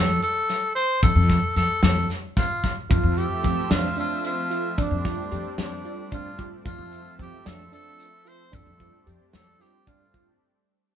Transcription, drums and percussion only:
0.23 closed hi-hat
0.50 snare, closed hi-hat
0.76 closed hi-hat
1.03 kick, closed hi-hat
1.29 kick, snare, closed hi-hat
1.56 snare, closed hi-hat
1.83 snare, closed hi-hat
2.10 snare, closed hi-hat
2.37 kick, snare, closed hi-hat
2.64 kick, snare, closed hi-hat
2.91 kick, closed hi-hat
3.18 closed hi-hat
3.44 kick, closed hi-hat
3.71 snare, closed hi-hat
3.98 closed hi-hat
4.25 closed hi-hat
4.51 closed hi-hat
4.78 kick, closed hi-hat
5.05 kick, snare, closed hi-hat
5.32 closed hi-hat
5.58 snare, closed hi-hat
5.85 closed hi-hat
6.12 kick, closed hi-hat
6.39 kick, closed hi-hat
6.65 kick, closed hi-hat
6.93 closed hi-hat
7.19 kick, closed hi-hat
7.46 snare, closed hi-hat
7.73 closed hi-hat
8.00 closed hi-hat
8.26 closed hi-hat
8.53 kick, closed hi-hat
8.80 kick, closed hi-hat
9.07 closed hi-hat
9.33 snare, closed hi-hat
9.61 snare, closed hi-hat
9.87 kick, closed hi-hat
10.14 kick, closed hi-hat

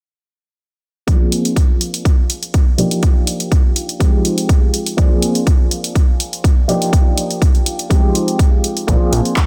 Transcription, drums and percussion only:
1.08 kick, closed hi-hat
1.32 closed hi-hat
1.45 closed hi-hat
1.56 kick, closed hi-hat
1.81 closed hi-hat
1.94 closed hi-hat
2.05 kick, closed hi-hat
2.30 closed hi-hat
2.43 closed hi-hat
2.54 kick, closed hi-hat
2.78 closed hi-hat
2.91 closed hi-hat
3.03 kick, closed hi-hat
3.27 closed hi-hat
3.40 closed hi-hat
3.52 kick, closed hi-hat
3.76 closed hi-hat
3.89 closed hi-hat
4.00 kick, closed hi-hat
4.25 closed hi-hat
4.38 closed hi-hat
4.49 kick, closed hi-hat
4.74 closed hi-hat
4.86 closed hi-hat
4.98 kick, closed hi-hat
5.22 closed hi-hat
5.35 closed hi-hat
5.47 kick, closed hi-hat
5.71 closed hi-hat
5.84 closed hi-hat
5.95 kick, closed hi-hat
6.20 closed hi-hat
6.33 closed hi-hat
6.44 kick, closed hi-hat
6.69 closed hi-hat
6.82 closed hi-hat
6.93 kick, closed hi-hat
7.18 closed hi-hat
7.31 closed hi-hat
7.42 kick, closed hi-hat
7.55 closed hi-hat
7.66 closed hi-hat
7.79 closed hi-hat
7.90 kick, closed hi-hat
8.15 closed hi-hat
8.28 closed hi-hat
8.39 kick, closed hi-hat
8.64 closed hi-hat
8.77 closed hi-hat
8.88 kick, closed hi-hat
9.13 closed hi-hat
9.25 closed hi-hat
9.36 kick, clap, closed hi-hat

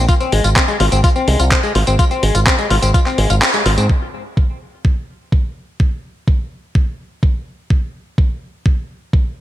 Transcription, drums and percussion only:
0.09 kick, closed hi-hat, tambourine
0.21 closed hi-hat, tambourine
0.32 open hi-hat
0.44 closed hi-hat, tambourine
0.56 kick, clap, closed hi-hat, tambourine
0.68 tambourine
0.80 open hi-hat
0.92 closed hi-hat, tambourine
1.04 kick, closed hi-hat, tambourine
1.16 tambourine
1.28 open hi-hat
1.40 closed hi-hat, tambourine
1.51 kick, clap, closed hi-hat, tambourine
1.63 tambourine
1.75 open hi-hat
1.87 closed hi-hat, tambourine
1.99 kick, closed hi-hat, tambourine
2.11 closed hi-hat, tambourine
2.23 open hi-hat
2.35 closed hi-hat, tambourine
2.47 kick, clap, closed hi-hat, tambourine
2.59 closed hi-hat, tambourine
2.71 open hi-hat
2.82 closed hi-hat, tambourine
2.94 kick, closed hi-hat, tambourine
3.06 clap, tambourine
3.18 open hi-hat
3.30 closed hi-hat, tambourine
3.42 clap, closed hi-hat, tambourine
3.54 closed hi-hat, tambourine
3.66 open hi-hat
3.78 closed hi-hat, tambourine
3.90 kick
4.37 kick
4.85 kick
5.32 kick
5.80 kick
6.28 kick
6.75 kick
7.23 kick
7.70 kick
8.18 kick
8.66 kick
9.13 kick

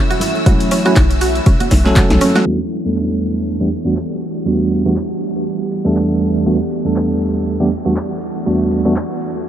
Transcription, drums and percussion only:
0.11 closed hi-hat, maracas
0.20 open hi-hat, low conga, maracas
0.35 maracas
0.46 kick, closed hi-hat, maracas
0.60 closed hi-hat, maracas
0.71 open hi-hat, maracas
0.85 closed hi-hat, maracas
0.96 kick, clap, closed hi-hat, maracas
1.10 closed hi-hat, maracas
1.21 open hi-hat, maracas
1.35 closed hi-hat, maracas
1.46 kick, closed hi-hat, maracas
1.60 closed hi-hat, high conga, maracas
1.71 kick, snare, open hi-hat, low conga, maracas
1.85 snare, maracas
1.96 kick, snare, clap, closed hi-hat, maracas
2.10 snare, closed hi-hat, maracas
2.21 open hi-hat, high conga, low conga, maracas
2.35 snare, closed hi-hat, maracas
2.72 maracas
2.86 maracas
2.96 clap, maracas
3.10 maracas
3.21 open hi-hat, maracas
3.36 maracas
3.47 maracas
3.71 open hi-hat, maracas
3.85 maracas
3.96 clap
4.11 maracas
4.21 open hi-hat, maracas
4.46 maracas
4.61 maracas
4.71 open hi-hat, maracas
4.86 maracas
4.96 clap
5.11 maracas
5.21 open hi-hat, maracas
5.35 maracas
5.46 maracas
5.71 open hi-hat, maracas
5.85 maracas
5.96 clap, maracas
6.11 maracas
6.21 open hi-hat, maracas
6.35 maracas
6.46 maracas
6.61 maracas
6.71 open hi-hat, maracas
6.86 maracas
6.96 clap
7.11 maracas
7.21 open hi-hat, maracas
7.35 maracas
7.46 maracas
7.71 open hi-hat, maracas
7.85 maracas
7.96 clap
8.10 maracas
8.21 open hi-hat, maracas
8.35 maracas
8.47 maracas
8.60 maracas
8.71 open hi-hat, maracas
8.86 maracas
8.96 clap, maracas
9.10 maracas
9.21 open hi-hat, maracas
9.36 maracas

